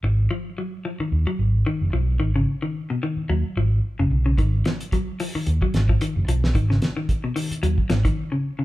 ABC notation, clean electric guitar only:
X:1
M:4/4
L:1/16
Q:"Swing 16ths" 1/4=111
K:G#dor
V:1 name="Clean electric guitar" clef=bass
z2 E,2 F,2 E, D,2 F,2 z D,2 E,2 | D, C,2 D,2 B,, D,2 F,2 E, z2 C,2 C, | D,2 E,2 F,2 E, D,2 F,2 E, D,2 E,2 | D, C,2 D,2 B,, D,2 F,2 E, D,2 C,2 C, |]